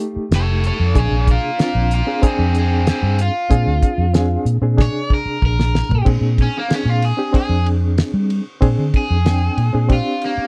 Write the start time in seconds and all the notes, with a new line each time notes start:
Already playing: A3 D#4 G4
0.00 closed hi-hat
0.16 muted fingered electric bass stroke
0.31 F1, snare, closed hi-hat
0.35 A4 C#5
0.64 A4 C#5, closed hi-hat
0.80 F2
0.94 A#1 C3 D4 G#4, kick, closed hi-hat
0.99 G#4 C#5
1.11 A#1
1.27 F4 A#4, kick, closed hi-hat
1.58 C4 D4 F4, snare, closed hi-hat
1.63 F4 A#4
1.75 A#1
1.91 F4 A#4, closed hi-hat
2.07 C4 D4 G#4
2.22 C4 D4 G#4, kick, closed hi-hat
2.26 C4 G#4
2.39 F2
2.55 C4, closed hi-hat
2.59 G#4
2.87 C4 G#4, snare, closed hi-hat
3.03 G2
3.19 F4, closed hi-hat
3.50 A#2 C4 D4 G#4, kick, closed hi-hat
3.67 D2
3.83 kick, closed hi-hat
3.98 F2
4.13 C4 D4 G#4, snare, closed hi-hat
4.45 A#2, closed hi-hat
4.61 A#2 C4 D4 G#4
4.76 C3 D4 G#4, kick, snare
4.82 C#5
5.10 A#4, kick
5.26 muted fingered electric bass stroke
5.42 A#1 A#4, kick
5.60 snare
5.75 snare
5.89 A#2, floor tom
6.05 A#2 C4 D4 G#4, kick, crash
6.21 A#2
6.38 C#4, kick, ride
6.58 A#3
6.69 C4 D4 G#4, snare, ride
6.74 C#4
6.85 A#2
6.89 F4
7.02 G#4, ride
7.17 C4 D4 G4
7.33 C4 D4 G#4, kick, ride
7.37 G#4
7.49 F2
7.66 ride
7.98 snare, ride
8.14 G3
8.30 ride
8.61 A#2 C4 D4 G#4, kick, ride
8.78 D3
8.94 G#4, kick, ride
9.10 F2
9.25 C4 D4 G5, snare, ride
9.57 A#2, ride
9.73 A#2 C4 D4 G#4
9.88 C4 D4 G4, kick, ride
9.93 F4
10.22 A#3, ride
10.38 muted fingered electric bass stroke